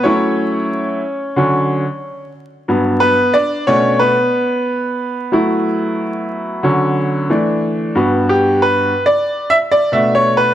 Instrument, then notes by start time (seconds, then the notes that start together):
grand piano
0.03 F#3 A3 C#4 E4 C#5
1.36 D3 F#3 C#4
2.68 G2 F#3 B3
3.00 B3 B4
3.34 D4 D5
3.67 B2 A3 C#4 D4 C#5
3.99 B3 B4
5.32 F#3 A3 E4
6.63 D3 F#3 C#4
7.30 E3 A3 D4
7.95 G2 B3 F#4
8.29 G4
8.62 B4
9.06 D5
9.50 E5
9.72 D5
9.92 B2 A3 D4 E5
10.15 C#5
10.37 B4